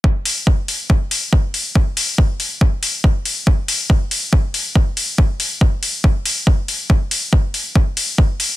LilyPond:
\new DrumStaff \with { instrumentName = "Drums" } \drummode { \time 4/4 \tempo 4 = 140 bd8 hho8 bd8 hho8 bd8 hho8 bd8 hho8 | bd8 hho8 bd8 hho8 bd8 hho8 bd8 hho8 | bd8 hho8 bd8 hho8 bd8 hho8 bd8 hho8 | bd8 hho8 bd8 hho8 bd8 hho8 bd8 hho8 |
bd8 hho8 bd8 hho8 bd8 hho8 bd8 hho8 | }